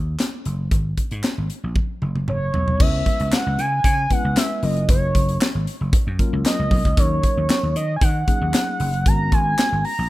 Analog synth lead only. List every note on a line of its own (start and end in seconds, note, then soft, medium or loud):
2.29 2.82 C#5 loud
2.81 3.35 E5 loud
3.33 3.61 F#5 loud
3.60 3.85 G#5 loud
3.86 4.13 G#5 loud
4.12 4.39 F#5 loud
4.38 4.65 E5 loud
4.64 4.89 D#5 medium
4.90 5.38 C#5 medium
6.47 7.00 D#5 medium
6.99 7.76 C#5 loud
7.77 7.94 D#5 medium
7.96 8.04 G#5 medium
8.03 9.09 F#5 loud
9.07 9.35 A#5 loud
9.33 9.85 G#5 loud
9.85 10.09 A#5 loud